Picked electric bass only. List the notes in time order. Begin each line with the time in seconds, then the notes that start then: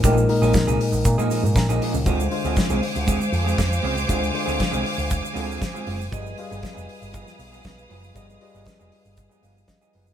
0.04 A#1
0.42 A#1
0.67 C2
0.93 A#1
1.05 A#2
1.18 A#2
1.43 G#2
1.55 A#2
1.69 A#1
1.94 C#2
2.06 D2
2.45 D2
2.70 C2
2.96 D2
3.32 F2
3.58 F2
3.84 C#2
4.09 D2
4.48 D2
4.73 C2
4.98 D2
5.36 D2
5.87 F#1
6.12 G1
6.51 G1
6.77 F1
7.02 G1
7.39 B1
7.65 B1
7.90 F#1
8.16 G1
8.55 G1
8.81 F1
9.05 G1
9.43 G1
9.95 F#1